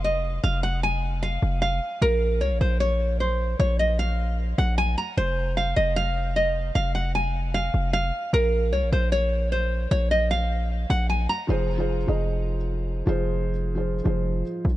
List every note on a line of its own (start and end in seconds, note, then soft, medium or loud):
0.00 0.40 F1 loud
0.04 0.41 D#5 medium
0.44 1.38 F1 loud
0.44 0.60 F5 medium
0.63 0.80 F#5 medium
0.83 1.20 G#5 medium
1.23 1.60 F5 medium
1.42 1.80 F1 loud
1.62 1.99 F5 medium
2.02 2.43 A#1 loud
2.02 2.39 A#4 loud
2.41 2.52 C2 loud
2.41 2.58 C#5 medium
2.51 2.60 A#1 loud
2.61 3.56 A#1 loud
2.61 2.78 C5 medium
2.80 3.18 C#5 medium
3.20 3.57 C5 medium
3.60 4.54 A#1 loud
3.60 3.76 C#5 loud
3.79 3.96 D#5 medium
3.99 4.36 F5 medium
4.58 4.96 A#1 loud
4.58 4.75 F#5 medium
4.78 4.95 G#5 medium
4.98 5.14 A#5 medium
5.17 5.74 F1 loud
5.17 5.55 C5 loud
5.57 5.74 F5 medium
5.76 6.71 F1 loud
5.76 5.93 D#5 medium
5.96 6.33 F5 medium
6.36 6.73 D#5 medium
6.75 7.70 F1 loud
6.75 6.92 F5 medium
6.95 7.12 F#5 medium
7.15 7.52 G#5 medium
7.54 7.91 F5 medium
7.74 8.12 F1 loud
7.93 8.31 F5 medium
8.33 8.74 A#1 loud
8.33 8.71 A#4 loud
8.73 8.84 C2 loud
8.73 8.89 C#5 medium
8.83 8.92 A#1 loud
8.92 9.87 A#1 loud
8.92 9.09 C5 medium
9.12 9.49 C#5 medium
9.52 9.89 C5 medium
9.91 10.86 A#1 loud
9.91 10.08 C#5 loud
10.11 10.28 D#5 medium
10.31 10.68 F5 medium
10.90 11.28 A#1 loud
10.90 11.07 F#5 medium
11.10 11.26 G#5 medium
11.29 11.46 A#5 medium
11.47 12.06 F1 loud
11.47 11.66 F3 loud
11.47 11.67 F4 medium
11.47 11.67 G#4 medium
11.47 11.68 C5 loud
11.77 11.96 F3 medium
11.77 11.97 F4 medium
11.77 11.97 G#4 medium
11.77 11.98 C5 medium
12.06 13.03 F1 loud
12.06 12.56 F3 medium
12.06 12.57 F4 medium
12.06 12.57 G#4 medium
12.06 12.58 D#5 medium
13.06 14.02 F1 loud
13.06 13.49 F3 medium
13.06 13.50 F4 medium
13.06 13.50 G#4 medium
13.06 13.51 C5 loud
13.75 13.94 F3 medium
13.75 13.94 F4 medium
13.75 13.95 G#4 medium
13.75 13.95 C5 medium
14.04 14.43 F1 loud
14.04 14.42 F3 medium
14.04 14.42 F4 medium
14.04 14.43 G#4 medium
14.04 14.43 C5 medium
14.65 14.77 A#1 loud